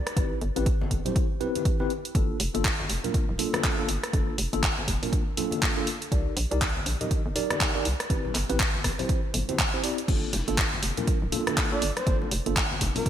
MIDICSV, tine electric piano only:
0, 0, Header, 1, 2, 480
1, 0, Start_track
1, 0, Key_signature, -2, "minor"
1, 0, Tempo, 495868
1, 162, Time_signature, 4, 2, 24, 8
1, 12675, End_track
2, 0, Start_track
2, 0, Title_t, "Tine electric piano"
2, 0, Program_c, 0, 4
2, 160, Note_on_c, 0, 60, 73
2, 160, Note_on_c, 0, 64, 69
2, 161, Note_on_c, 0, 67, 70
2, 162, Note_on_c, 0, 71, 83
2, 368, Note_off_c, 0, 60, 0
2, 368, Note_off_c, 0, 64, 0
2, 369, Note_off_c, 0, 67, 0
2, 369, Note_off_c, 0, 71, 0
2, 542, Note_on_c, 0, 60, 94
2, 543, Note_on_c, 0, 64, 90
2, 544, Note_on_c, 0, 67, 89
2, 544, Note_on_c, 0, 71, 105
2, 646, Note_off_c, 0, 60, 0
2, 647, Note_off_c, 0, 64, 0
2, 647, Note_off_c, 0, 67, 0
2, 647, Note_off_c, 0, 71, 0
2, 1022, Note_on_c, 0, 60, 82
2, 1023, Note_on_c, 0, 64, 76
2, 1024, Note_on_c, 0, 67, 75
2, 1024, Note_on_c, 0, 72, 88
2, 1215, Note_off_c, 0, 60, 0
2, 1216, Note_off_c, 0, 64, 0
2, 1216, Note_off_c, 0, 67, 0
2, 1216, Note_off_c, 0, 72, 0
2, 1359, Note_on_c, 0, 60, 92
2, 1360, Note_on_c, 0, 64, 84
2, 1360, Note_on_c, 0, 67, 85
2, 1362, Note_on_c, 0, 71, 102
2, 1709, Note_off_c, 0, 60, 0
2, 1709, Note_off_c, 0, 64, 0
2, 1710, Note_off_c, 0, 67, 0
2, 1710, Note_off_c, 0, 71, 0
2, 1742, Note_on_c, 0, 60, 95
2, 1743, Note_on_c, 0, 64, 86
2, 1744, Note_on_c, 0, 67, 86
2, 1744, Note_on_c, 0, 71, 101
2, 1846, Note_off_c, 0, 60, 0
2, 1846, Note_off_c, 0, 64, 0
2, 1847, Note_off_c, 0, 67, 0
2, 1847, Note_off_c, 0, 71, 0
2, 2079, Note_on_c, 0, 58, 78
2, 2080, Note_on_c, 0, 62, 70
2, 2081, Note_on_c, 0, 65, 69
2, 2081, Note_on_c, 0, 69, 86
2, 2288, Note_off_c, 0, 58, 0
2, 2288, Note_off_c, 0, 62, 0
2, 2289, Note_off_c, 0, 65, 0
2, 2289, Note_off_c, 0, 69, 0
2, 2462, Note_on_c, 0, 58, 96
2, 2462, Note_on_c, 0, 62, 87
2, 2463, Note_on_c, 0, 65, 87
2, 2464, Note_on_c, 0, 69, 104
2, 2566, Note_off_c, 0, 58, 0
2, 2566, Note_off_c, 0, 62, 0
2, 2566, Note_off_c, 0, 65, 0
2, 2567, Note_off_c, 0, 69, 0
2, 2943, Note_on_c, 0, 58, 84
2, 2943, Note_on_c, 0, 62, 74
2, 2944, Note_on_c, 0, 65, 74
2, 2945, Note_on_c, 0, 70, 91
2, 3135, Note_off_c, 0, 58, 0
2, 3136, Note_off_c, 0, 62, 0
2, 3136, Note_off_c, 0, 65, 0
2, 3137, Note_off_c, 0, 70, 0
2, 3280, Note_on_c, 0, 58, 93
2, 3281, Note_on_c, 0, 62, 86
2, 3282, Note_on_c, 0, 65, 85
2, 3282, Note_on_c, 0, 69, 101
2, 3630, Note_off_c, 0, 58, 0
2, 3630, Note_off_c, 0, 62, 0
2, 3630, Note_off_c, 0, 65, 0
2, 3631, Note_off_c, 0, 69, 0
2, 3664, Note_on_c, 0, 58, 94
2, 3664, Note_on_c, 0, 62, 86
2, 3665, Note_on_c, 0, 65, 86
2, 3666, Note_on_c, 0, 69, 105
2, 3767, Note_off_c, 0, 58, 0
2, 3767, Note_off_c, 0, 62, 0
2, 3768, Note_off_c, 0, 65, 0
2, 3768, Note_off_c, 0, 69, 0
2, 4000, Note_on_c, 0, 58, 75
2, 4001, Note_on_c, 0, 62, 69
2, 4002, Note_on_c, 0, 65, 69
2, 4002, Note_on_c, 0, 69, 83
2, 4208, Note_off_c, 0, 58, 0
2, 4209, Note_off_c, 0, 62, 0
2, 4209, Note_off_c, 0, 65, 0
2, 4209, Note_off_c, 0, 69, 0
2, 4385, Note_on_c, 0, 58, 96
2, 4385, Note_on_c, 0, 62, 86
2, 4386, Note_on_c, 0, 65, 88
2, 4387, Note_on_c, 0, 69, 109
2, 4487, Note_off_c, 0, 58, 0
2, 4487, Note_off_c, 0, 62, 0
2, 4488, Note_off_c, 0, 65, 0
2, 4488, Note_off_c, 0, 69, 0
2, 4864, Note_on_c, 0, 58, 83
2, 4865, Note_on_c, 0, 62, 78
2, 4866, Note_on_c, 0, 65, 74
2, 4867, Note_on_c, 0, 70, 90
2, 5056, Note_off_c, 0, 58, 0
2, 5057, Note_off_c, 0, 62, 0
2, 5057, Note_off_c, 0, 65, 0
2, 5057, Note_off_c, 0, 70, 0
2, 5201, Note_on_c, 0, 58, 93
2, 5202, Note_on_c, 0, 62, 85
2, 5203, Note_on_c, 0, 65, 87
2, 5204, Note_on_c, 0, 69, 104
2, 5550, Note_off_c, 0, 58, 0
2, 5551, Note_off_c, 0, 62, 0
2, 5551, Note_off_c, 0, 65, 0
2, 5551, Note_off_c, 0, 69, 0
2, 5584, Note_on_c, 0, 58, 97
2, 5585, Note_on_c, 0, 62, 89
2, 5586, Note_on_c, 0, 65, 89
2, 5587, Note_on_c, 0, 69, 105
2, 5687, Note_off_c, 0, 58, 0
2, 5687, Note_off_c, 0, 62, 0
2, 5688, Note_off_c, 0, 65, 0
2, 5688, Note_off_c, 0, 69, 0
2, 5921, Note_on_c, 0, 63, 76
2, 5921, Note_on_c, 0, 67, 69
2, 5922, Note_on_c, 0, 70, 71
2, 5923, Note_on_c, 0, 74, 85
2, 6129, Note_off_c, 0, 63, 0
2, 6129, Note_off_c, 0, 67, 0
2, 6129, Note_off_c, 0, 70, 0
2, 6130, Note_off_c, 0, 74, 0
2, 6303, Note_on_c, 0, 63, 97
2, 6305, Note_on_c, 0, 67, 89
2, 6305, Note_on_c, 0, 70, 89
2, 6306, Note_on_c, 0, 74, 104
2, 6407, Note_off_c, 0, 63, 0
2, 6407, Note_off_c, 0, 67, 0
2, 6408, Note_off_c, 0, 70, 0
2, 6408, Note_off_c, 0, 74, 0
2, 6784, Note_on_c, 0, 63, 83
2, 6784, Note_on_c, 0, 67, 75
2, 6785, Note_on_c, 0, 70, 74
2, 6786, Note_on_c, 0, 75, 92
2, 6976, Note_off_c, 0, 63, 0
2, 6976, Note_off_c, 0, 67, 0
2, 6977, Note_off_c, 0, 70, 0
2, 6977, Note_off_c, 0, 75, 0
2, 7120, Note_on_c, 0, 63, 94
2, 7121, Note_on_c, 0, 67, 86
2, 7121, Note_on_c, 0, 70, 89
2, 7123, Note_on_c, 0, 74, 105
2, 7470, Note_off_c, 0, 63, 0
2, 7470, Note_off_c, 0, 67, 0
2, 7470, Note_off_c, 0, 70, 0
2, 7471, Note_off_c, 0, 74, 0
2, 7502, Note_on_c, 0, 63, 95
2, 7503, Note_on_c, 0, 67, 86
2, 7504, Note_on_c, 0, 70, 89
2, 7504, Note_on_c, 0, 74, 103
2, 7606, Note_off_c, 0, 63, 0
2, 7606, Note_off_c, 0, 67, 0
2, 7607, Note_off_c, 0, 70, 0
2, 7607, Note_off_c, 0, 74, 0
2, 7840, Note_on_c, 0, 60, 74
2, 7841, Note_on_c, 0, 64, 69
2, 7842, Note_on_c, 0, 67, 71
2, 7843, Note_on_c, 0, 71, 86
2, 8048, Note_off_c, 0, 60, 0
2, 8049, Note_off_c, 0, 64, 0
2, 8049, Note_off_c, 0, 67, 0
2, 8049, Note_off_c, 0, 71, 0
2, 8223, Note_on_c, 0, 60, 96
2, 8224, Note_on_c, 0, 64, 89
2, 8224, Note_on_c, 0, 67, 90
2, 8225, Note_on_c, 0, 71, 108
2, 8326, Note_off_c, 0, 60, 0
2, 8327, Note_off_c, 0, 64, 0
2, 8327, Note_off_c, 0, 67, 0
2, 8327, Note_off_c, 0, 71, 0
2, 8702, Note_on_c, 0, 60, 80
2, 8703, Note_on_c, 0, 64, 76
2, 8704, Note_on_c, 0, 67, 74
2, 8704, Note_on_c, 0, 72, 93
2, 8895, Note_off_c, 0, 60, 0
2, 8896, Note_off_c, 0, 64, 0
2, 8896, Note_off_c, 0, 67, 0
2, 8896, Note_off_c, 0, 72, 0
2, 9183, Note_on_c, 0, 60, 80
2, 9183, Note_on_c, 0, 64, 73
2, 9184, Note_on_c, 0, 67, 71
2, 9185, Note_on_c, 0, 72, 90
2, 9286, Note_off_c, 0, 60, 0
2, 9286, Note_off_c, 0, 64, 0
2, 9287, Note_off_c, 0, 67, 0
2, 9287, Note_off_c, 0, 72, 0
2, 9423, Note_on_c, 0, 60, 82
2, 9423, Note_on_c, 0, 64, 75
2, 9424, Note_on_c, 0, 67, 73
2, 9425, Note_on_c, 0, 72, 91
2, 9497, Note_off_c, 0, 60, 0
2, 9498, Note_off_c, 0, 64, 0
2, 9498, Note_off_c, 0, 67, 0
2, 9498, Note_off_c, 0, 72, 0
2, 9519, Note_on_c, 0, 60, 81
2, 9520, Note_on_c, 0, 64, 76
2, 9521, Note_on_c, 0, 67, 76
2, 9522, Note_on_c, 0, 74, 89
2, 9667, Note_off_c, 0, 60, 0
2, 9668, Note_off_c, 0, 64, 0
2, 9668, Note_off_c, 0, 67, 0
2, 9669, Note_off_c, 0, 74, 0
2, 9759, Note_on_c, 0, 58, 76
2, 9760, Note_on_c, 0, 62, 70
2, 9760, Note_on_c, 0, 65, 71
2, 9761, Note_on_c, 0, 69, 84
2, 9968, Note_off_c, 0, 58, 0
2, 9968, Note_off_c, 0, 62, 0
2, 9968, Note_off_c, 0, 65, 0
2, 9969, Note_off_c, 0, 69, 0
2, 10142, Note_on_c, 0, 58, 94
2, 10142, Note_on_c, 0, 62, 86
2, 10143, Note_on_c, 0, 65, 87
2, 10144, Note_on_c, 0, 69, 106
2, 10246, Note_off_c, 0, 58, 0
2, 10246, Note_off_c, 0, 62, 0
2, 10246, Note_off_c, 0, 65, 0
2, 10247, Note_off_c, 0, 69, 0
2, 10622, Note_on_c, 0, 58, 80
2, 10623, Note_on_c, 0, 62, 76
2, 10624, Note_on_c, 0, 65, 73
2, 10624, Note_on_c, 0, 70, 91
2, 10815, Note_off_c, 0, 58, 0
2, 10815, Note_off_c, 0, 62, 0
2, 10816, Note_off_c, 0, 65, 0
2, 10816, Note_off_c, 0, 70, 0
2, 10959, Note_on_c, 0, 58, 93
2, 10960, Note_on_c, 0, 62, 87
2, 10960, Note_on_c, 0, 65, 85
2, 10961, Note_on_c, 0, 69, 103
2, 11309, Note_off_c, 0, 58, 0
2, 11310, Note_off_c, 0, 62, 0
2, 11310, Note_off_c, 0, 65, 0
2, 11310, Note_off_c, 0, 69, 0
2, 11343, Note_on_c, 0, 58, 95
2, 11344, Note_on_c, 0, 62, 89
2, 11344, Note_on_c, 0, 65, 88
2, 11345, Note_on_c, 0, 69, 108
2, 11446, Note_off_c, 0, 58, 0
2, 11447, Note_off_c, 0, 62, 0
2, 11447, Note_off_c, 0, 65, 0
2, 11447, Note_off_c, 0, 69, 0
2, 11680, Note_on_c, 0, 58, 74
2, 11680, Note_on_c, 0, 62, 69
2, 11681, Note_on_c, 0, 65, 71
2, 11682, Note_on_c, 0, 69, 84
2, 11888, Note_off_c, 0, 58, 0
2, 11888, Note_off_c, 0, 62, 0
2, 11889, Note_off_c, 0, 65, 0
2, 11889, Note_off_c, 0, 69, 0
2, 12063, Note_on_c, 0, 58, 96
2, 12064, Note_on_c, 0, 62, 87
2, 12065, Note_on_c, 0, 65, 90
2, 12065, Note_on_c, 0, 69, 107
2, 12166, Note_off_c, 0, 58, 0
2, 12167, Note_off_c, 0, 62, 0
2, 12167, Note_off_c, 0, 65, 0
2, 12167, Note_off_c, 0, 69, 0
2, 12542, Note_on_c, 0, 58, 84
2, 12543, Note_on_c, 0, 62, 75
2, 12544, Note_on_c, 0, 65, 78
2, 12544, Note_on_c, 0, 70, 90
2, 12675, Note_off_c, 0, 58, 0
2, 12675, Note_off_c, 0, 62, 0
2, 12675, Note_off_c, 0, 65, 0
2, 12675, Note_off_c, 0, 70, 0
2, 12675, End_track
0, 0, End_of_file